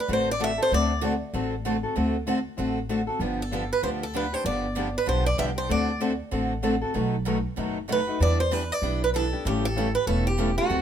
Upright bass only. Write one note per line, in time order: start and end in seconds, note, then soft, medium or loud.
0.08 0.58 A1 medium
0.72 1.21 D2 medium
1.33 1.83 A1 medium
1.96 2.46 D2 medium
2.58 3.08 A1 medium
3.19 3.70 G1 medium
3.83 4.33 D2 medium
4.44 4.95 G1 medium
5.07 5.34 B1 medium
5.39 5.65 C2 medium
5.70 6.20 D2 medium
6.32 6.82 A1 medium
6.95 7.45 B1 medium
7.57 8.07 F#1 medium
8.20 8.70 E2 medium
8.82 9.32 B1 medium
9.45 9.95 A1 medium
10.07 10.57 E1 medium
10.70 10.82 D2 medium